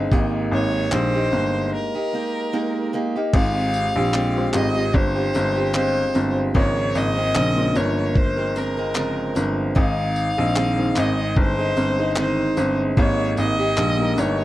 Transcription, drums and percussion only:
0.12 kick loud
0.92 clap loud
0.92 clap medium
3.33 kick loud
3.33 crash medium
3.74 tambourine medium
4.14 clap medium
4.53 clap loud
4.53 tambourine medium
4.94 kick medium
5.35 tambourine medium
5.74 clap medium
5.74 clap loud
6.15 tambourine medium
6.55 kick loud
6.95 tambourine medium
7.35 clap loud
7.35 clap medium
7.75 tambourine medium
8.15 kick loud
8.56 tambourine medium
8.95 clap medium
9.36 tambourine medium
9.76 kick loud
10.16 tambourine medium
10.56 clap medium
10.56 clap loud
10.96 clap loud
10.96 tambourine medium
11.36 kick loud
11.77 tambourine medium
12.16 clap medium
12.16 clap loud
12.57 tambourine medium
12.97 kick loud
13.37 tambourine medium
13.77 clap medium
14.18 tambourine medium

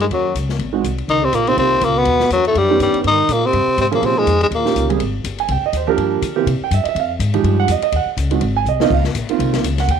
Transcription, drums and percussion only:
0.00 ride soft
0.10 kick soft
0.10 ride soft
0.35 kick soft
0.35 hi-hat pedal medium
0.35 ride medium
0.49 snare soft
0.59 kick soft
0.59 ride soft
0.84 kick soft
0.84 hi-hat pedal soft
0.84 ride soft
0.98 ride soft
1.08 kick soft
1.08 ride soft
1.33 kick soft
1.33 hi-hat pedal medium
1.33 ride medium
1.47 ride soft
1.57 kick soft
1.57 ride medium
1.81 kick soft
1.81 hi-hat pedal soft
1.81 ride medium
2.05 kick soft
2.05 ride medium
2.20 snare soft
2.30 kick soft
2.30 hi-hat pedal soft
2.30 ride medium
2.45 ride soft
2.55 kick soft
2.55 ride soft
2.80 kick soft
2.80 hi-hat pedal soft
2.80 ride medium
2.94 ride soft
3.04 kick soft
3.04 ride soft
3.29 kick soft
3.29 hi-hat pedal medium
3.29 ride medium
3.53 kick soft
3.53 ride soft
3.78 kick soft
3.78 hi-hat pedal soft
3.78 ride medium
3.92 ride soft
4.02 kick soft
4.02 ride medium
4.27 kick soft
4.27 hi-hat pedal soft
4.27 ride medium
4.41 ride soft
4.51 kick soft
4.51 ride medium
4.66 snare soft
4.75 kick soft
4.75 hi-hat pedal medium
4.75 ride medium
4.90 ride soft
5.00 kick soft
5.00 ride medium
5.24 kick soft
5.24 hi-hat pedal medium
5.24 ride medium
5.38 ride soft
5.48 kick soft
5.48 ride medium
5.73 kick soft
5.73 hi-hat pedal medium
5.73 ride medium
5.98 kick soft
5.98 ride medium
6.22 kick soft
6.22 hi-hat pedal medium
6.22 ride medium
6.47 kick soft
6.47 ride medium
6.71 kick soft
6.71 hi-hat pedal medium
6.71 ride medium
6.85 ride soft
6.95 kick soft
6.95 ride medium
7.19 kick soft
7.19 hi-hat pedal medium
7.19 ride medium
7.34 ride soft
7.44 kick soft
7.44 ride medium
7.68 kick soft
7.68 hi-hat pedal medium
7.68 ride medium
7.82 ride soft
7.92 kick soft
7.92 ride medium
8.17 kick soft
8.17 hi-hat pedal medium
8.17 ride medium
8.31 ride soft
8.41 kick soft
8.41 ride medium
8.66 hi-hat pedal medium
8.80 snare medium
8.90 kick medium
8.90 crash medium
9.04 snare soft
9.15 kick soft
9.15 hi-hat pedal medium
9.15 ride medium
9.29 ride soft
9.39 kick soft
9.39 ride medium
9.54 snare medium
9.54 ride soft
9.64 kick soft
9.64 hi-hat pedal medium
9.64 ride medium
9.78 snare soft
9.78 ride soft
9.88 kick soft
9.88 ride medium

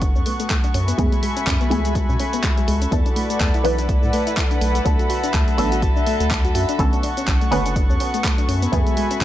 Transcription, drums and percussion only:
0.02 kick loud
0.02 closed hi-hat medium
0.02 shaker medium
0.16 shaker soft
0.26 open hi-hat loud
0.40 closed hi-hat medium
0.40 shaker medium
0.50 kick loud
0.50 clap loud
0.50 closed hi-hat medium
0.50 shaker medium
0.64 closed hi-hat soft
0.64 shaker soft
0.74 open hi-hat medium
0.88 closed hi-hat medium
0.88 shaker medium
0.99 kick loud
0.99 closed hi-hat medium
0.99 shaker medium
1.12 closed hi-hat soft
1.12 shaker soft
1.23 open hi-hat loud
1.37 closed hi-hat medium
1.37 shaker medium
1.47 kick loud
1.47 clap loud
1.47 closed hi-hat medium
1.47 shaker medium
1.61 closed hi-hat soft
1.61 shaker soft
1.71 open hi-hat loud
1.85 closed hi-hat medium
1.85 shaker medium
1.95 kick loud
1.95 closed hi-hat medium
1.95 shaker medium
2.09 shaker soft
2.20 open hi-hat loud
2.33 closed hi-hat medium
2.33 shaker medium
2.44 kick loud
2.44 clap loud
2.44 closed hi-hat medium
2.44 shaker medium
2.58 closed hi-hat soft
2.58 shaker soft
2.68 open hi-hat loud
2.82 closed hi-hat medium
2.82 shaker medium
2.92 kick loud
2.92 closed hi-hat medium
2.92 shaker medium
3.06 closed hi-hat soft
3.06 shaker soft
3.16 open hi-hat loud
3.30 closed hi-hat soft
3.30 shaker medium
3.40 kick loud
3.40 clap loud
3.40 closed hi-hat medium
3.40 shaker medium
3.54 closed hi-hat soft
3.54 shaker soft
3.65 open hi-hat loud
3.79 closed hi-hat medium
3.79 shaker medium
3.89 kick loud
3.89 closed hi-hat medium
3.89 shaker medium
4.03 shaker soft
4.13 open hi-hat loud
4.27 closed hi-hat medium
4.27 shaker medium
4.37 kick loud
4.37 clap loud
4.37 closed hi-hat medium
4.37 shaker medium
4.51 closed hi-hat soft
4.51 shaker soft
4.61 open hi-hat loud
4.75 closed hi-hat soft
4.75 shaker medium
4.86 kick loud
4.86 closed hi-hat medium
4.86 shaker medium
4.99 closed hi-hat soft
4.99 shaker soft
5.10 open hi-hat loud
5.24 closed hi-hat soft
5.24 shaker medium
5.34 kick loud
5.34 clap loud
5.34 closed hi-hat medium
5.34 shaker medium
5.48 closed hi-hat soft
5.48 shaker soft
5.58 open hi-hat loud
5.72 closed hi-hat soft
5.72 shaker medium
5.82 kick loud
5.82 closed hi-hat medium
5.82 shaker medium
5.97 shaker soft
6.07 open hi-hat loud
6.20 closed hi-hat soft
6.20 shaker medium
6.31 kick loud
6.31 clap loud
6.31 closed hi-hat medium
6.31 shaker medium
6.45 closed hi-hat soft
6.45 shaker soft
6.55 open hi-hat loud
6.69 closed hi-hat soft
6.69 shaker medium
6.79 kick loud
6.79 closed hi-hat medium
6.79 shaker medium
6.93 closed hi-hat soft
6.93 shaker soft
7.03 open hi-hat loud
7.17 closed hi-hat soft
7.17 shaker medium
7.28 kick loud
7.28 clap loud
7.28 closed hi-hat medium
7.28 shaker medium
7.41 closed hi-hat soft
7.41 shaker soft
7.52 open hi-hat medium
7.66 closed hi-hat soft
7.66 shaker medium
7.76 kick loud
7.76 closed hi-hat medium
7.76 shaker medium
7.90 shaker soft
8.00 open hi-hat loud
8.14 closed hi-hat soft
8.14 shaker medium
8.24 kick loud
8.24 clap loud
8.24 closed hi-hat medium
8.24 shaker medium
8.38 closed hi-hat soft
8.38 shaker soft
8.49 open hi-hat medium
8.62 closed hi-hat soft
8.62 shaker medium
8.73 kick loud
8.73 closed hi-hat medium
8.73 shaker medium
8.87 closed hi-hat soft
8.87 shaker soft
8.97 open hi-hat loud
9.11 closed hi-hat medium
9.11 shaker medium
9.21 kick loud
9.21 clap loud
9.21 closed hi-hat medium
9.21 shaker medium

